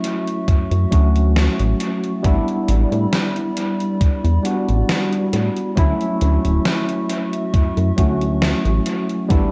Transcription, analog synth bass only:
0.48 F#2
0.71 F#2
0.92 D2
1.60 A1
2.24 A1
2.69 A1
2.92 A2
4.24 E2
4.69 A1
5.33 A2
5.77 D2
6.22 D2
6.45 D1
7.54 F#2
7.77 F#2
7.98 D2
8.65 A1
9.30 A1

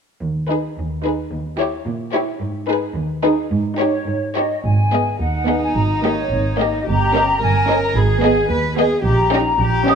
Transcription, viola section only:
0.50 D#4
1.05 D#4
1.60 E4
2.15 E4
2.69 D#4
3.24 D#4
3.80 D#4
4.36 D#4
4.93 B3
5.48 B3
6.04 A#3
6.59 A#3
7.14 C#4
7.68 C#4
8.23 B3
8.78 B3
9.33 C#4
9.88 C#4

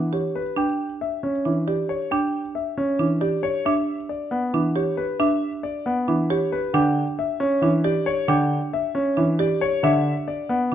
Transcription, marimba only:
Already playing: D4
0.13 G4
0.57 D4
1.45 D4
1.68 G4
2.12 D4
2.99 D4
3.21 G4
3.66 D4
4.54 D4
4.76 G4
5.20 D4
6.08 D4
6.30 G4
6.74 D4
7.63 D4
7.84 G4
8.28 D4
9.17 D4
9.39 G4
9.84 D4

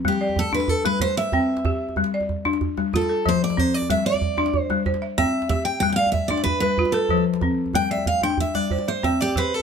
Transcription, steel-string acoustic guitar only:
0.08 G4
0.39 A4
0.54 B4
0.69 A4
0.85 B4
1.02 C5
1.17 E5
2.96 A4
3.29 C5
3.44 D5
3.59 C5
3.74 D5
3.90 E5
4.06 D5
4.61 C5
5.18 E5
5.49 E5
5.65 G5
5.80 G5
5.92 F5 G5
6.12 E5
6.28 D5
6.44 B4
6.60 B4
6.92 A4
7.75 G5
7.91 E5
8.07 F5
8.23 G5
8.40 E5
8.55 D5
8.88 C5
9.04 E5
9.21 G4 D5
9.37 B4 C5
9.54 A4

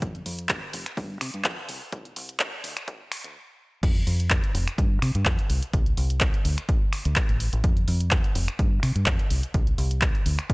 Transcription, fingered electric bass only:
0.02 F2
0.26 F2
0.73 F1
0.97 G2
1.21 C3
1.34 G2
1.45 F2
1.69 C2
1.92 C2
2.16 C2
2.64 D2
3.24 D2
3.83 F2
4.07 F2
4.54 F1
4.78 G2
5.02 C3
5.15 G2
5.26 F2
5.50 C2
5.73 C2
5.97 C2
6.45 D2
7.05 D2
7.29 A1
7.53 A1
7.64 F2
7.88 F2
8.35 F1
8.59 G2
8.83 C3
8.96 G2
9.07 F2
9.31 C2
9.54 C2
9.78 C2
10.26 D2

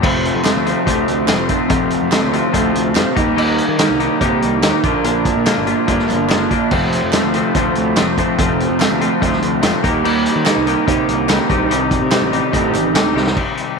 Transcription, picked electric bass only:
0.03 F1
0.35 F2
0.56 D2
0.87 D2
1.09 D2
1.29 F1
1.71 F1
2.02 F2
2.23 D2
2.54 D2
2.74 D2
2.95 F1
3.17 D#2
3.68 D#3
3.89 C2
4.21 C3
4.42 C2
4.63 D#2
4.84 A#1
5.36 A#2
5.58 G1
5.88 G2
6.10 G1
6.30 F#1
6.72 F1
7.03 F2
7.24 D2
7.55 D2
7.77 D2
7.97 F1
8.39 F1
8.69 F2
8.91 D2
9.22 D2
9.43 D2
9.63 F1
9.84 D#2
10.36 D#3
10.57 C2
10.88 C3
11.08 C2
11.30 C#2
11.50 C2
12.02 C3
12.22 A1
12.54 A2
12.73 A1
12.94 D2
13.15 C2

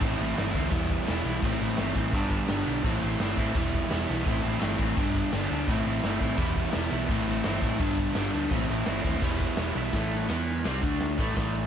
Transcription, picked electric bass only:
0.01 A1
0.19 A1
0.38 G1
0.54 D2
0.72 E1
1.08 E1
1.24 B1
1.43 A1
1.61 A1
1.78 G1
1.95 A1
2.13 G1
2.50 G1
2.67 B1
2.84 A1
3.02 A1
3.20 G1
3.37 A1
3.55 E1
3.91 E1
4.09 B1
4.26 A1
4.44 A1
4.62 G1
4.79 A1
4.97 G1
5.33 G1
5.50 D2
5.68 A1
5.86 A1
6.03 G1
6.21 A1
6.38 E1
6.74 E1
6.91 B1
7.09 A1
7.27 A1
7.44 G1
7.62 A1
7.80 G1
8.15 G1
8.33 D2
8.51 A1
8.69 A1
8.86 G1
9.04 D#2
9.22 E1
9.57 E1
9.75 B1
9.93 A1
10.29 E2
10.65 C2
10.83 D2
11.19 A1
11.37 A1

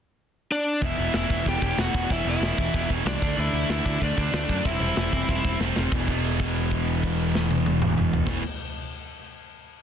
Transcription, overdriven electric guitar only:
0.81 E2 B2 E3
0.97 E2 B2 E3
1.14 E2 B2 E3
1.31 E2 B2 E3
1.47 E2 B2 E3
1.62 E2 B2 E3
1.79 E2 B2 E3
1.94 E2 B2 E3
2.10 E2 B2 E3
2.27 E2 B2 E3
2.43 E2 B2 E3
2.59 E2 B2 E3
2.74 E2 B2 E3
2.90 E2 B2 E3
3.05 E2 B2 E3
3.21 D3 A3 D4
3.37 D3 A3 D4
3.53 D3 A3 D4
3.69 D3 A3 D4
3.84 D3 A3 D4
3.99 D3 A3 D4
4.16 D3 A3 D4
4.31 D3 A3 D4
4.48 D3 A3 D4
4.64 C3 G3 C4
4.79 C3 G3 C4
4.97 C3 G3 C4
5.13 C3 G3 C4
5.28 C3 G3 C4
5.45 C3 G3 C4
5.60 C3 G3 C4
5.77 C3 G3 C4
5.92 E2 B2 E3
8.26 E2 B2 E3

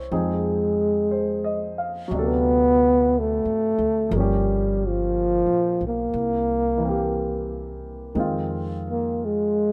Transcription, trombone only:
0.14 G#3
2.21 B3
3.19 A3
4.17 G3
4.87 F3
5.87 A#3
8.90 A#3
9.25 G#3

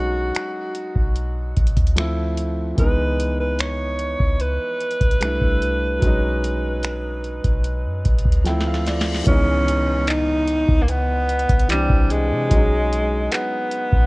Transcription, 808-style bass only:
Already playing: B1
0.96 B1
1.57 B1
1.77 D2
2.78 C#2
4.20 C#2
5.01 C2
5.42 C2
6.03 B1
7.44 B1
7.85 F#2
8.05 B1
8.25 D2
9.27 C#2
10.69 C#2
11.50 C2
11.90 C2
12.31 C3
12.51 B1
13.93 B1

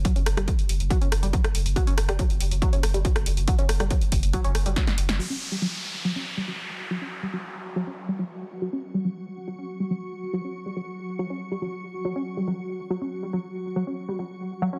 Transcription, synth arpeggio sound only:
0.05 F#3
0.16 C#4
0.37 G3
0.48 F#3
0.90 F#3
1.01 C#4
1.23 G3
1.33 F#3
1.76 F#3
1.87 C#4
2.08 G3
2.19 F#3
2.62 F#3
2.73 C#4
2.94 G3
3.05 F#3
3.48 F#3
3.58 C#4
3.80 G3
3.91 F#3
4.33 F#3
4.44 C#4
4.66 G3
4.76 F#3
5.19 F#3
5.30 C#4
5.52 G3
5.62 F#3
6.05 F#3
6.16 C#4
6.37 G3
6.48 F#3
6.91 F#3
7.01 C#4
7.23 G3
7.33 F#3
7.76 F#3
7.87 C#4
8.09 G3
8.19 F#3
8.62 F#3
8.73 C#4
8.94 G3
9.05 F#3
9.48 F#3
9.59 C#4
9.80 G3
9.91 F#3
10.33 F#3
10.45 C#4
10.66 G3
10.76 F#3
11.19 F#3
11.30 C#4
11.52 G3
11.62 F#3
12.05 F#3
12.16 C#4
12.37 G3
12.48 F#3
12.90 F#3
13.01 C#4
13.23 G3
13.33 F#3
13.76 F#3
13.87 C#4
14.09 G3
14.19 F#3
14.62 F#3
14.73 C#4

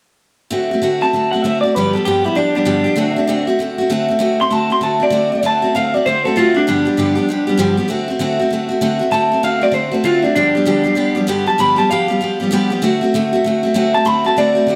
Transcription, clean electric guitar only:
1.02 A5
1.31 F#5
1.42 E5
1.61 D5
1.75 B4
1.94 A4
2.05 G4
2.25 E4
2.36 D4
2.56 D4
4.41 C6
4.52 A5
4.72 C6
4.83 A5
5.03 D5
5.46 A5
5.76 F5
5.94 D5
6.06 C5
6.25 A4
6.37 F4
6.57 D4
6.69 D4
9.12 A5
9.44 F5
9.63 D5
9.74 C5
9.94 A4
10.05 F4
10.23 D4
10.35 D4
11.48 A5
11.60 B5
11.78 A5
11.90 F5
13.94 A5
14.06 B5
14.26 A5
14.38 D5

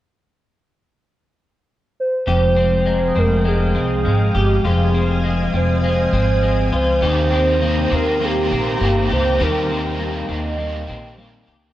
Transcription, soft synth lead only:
2.00 C5
3.18 A#4
3.47 G#4
4.37 G4
4.67 G#4
5.56 C5
6.75 C5
7.95 A#4
8.25 G4
9.13 C5
9.42 A#4
10.31 D#5

